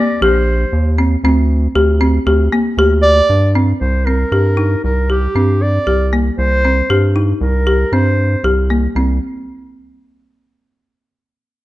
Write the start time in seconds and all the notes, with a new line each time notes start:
Already playing: A#3 D5
0.21 A#1 G4 C5
0.73 D#2
0.98 C4
1.24 D2 C4
1.75 D2 G4
2.01 C4
2.26 D2 G4
2.52 A#3
2.77 D2 G4
3.03 D5
3.29 G2
3.55 C4
3.80 C2 C5
4.06 C4 A#4
4.32 G2 G4
4.57 D#4
4.84 C2 A#4
5.10 G4
5.35 G2 C4
5.62 D5
5.87 C2 G4
6.13 A#3
6.38 C2 C5
6.65 C4
6.90 G2 G4
7.16 D#4
7.41 C2 A#4
7.67 G4
7.92 G2 C4 C5
8.44 C2 G4
8.70 A#3
8.95 C2 C4